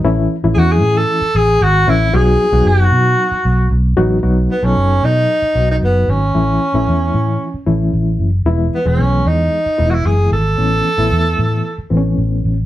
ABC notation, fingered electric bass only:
X:1
M:4/4
L:1/16
Q:1/4=114
K:Bmix
V:1 name="Fingered electric bass" clef=bass
A,,,2 z A,,, E,,2 A,,2 z2 A,,,2 G,,,2 A,,,2 | B,,,2 z B,,, F,,,2 B,,2 z2 B,,,2 B,,,2 A,,,2 | B,,,2 z B,,, F,,,2 B,,2 z2 B,,,2 F,,,2 G,,,2 | A,,,2 z A,,, E,,2 A,,2 z2 A,,,2 A,,,2 F,,,2 |
E,,,2 z E,,, B,,,2 E,,2 z2 E,,,2 F,,,2 G,,,2 | A,,,2 z A,,, E,,2 A,,2 z2 A,,,2 A,,,2 A,,,2 |]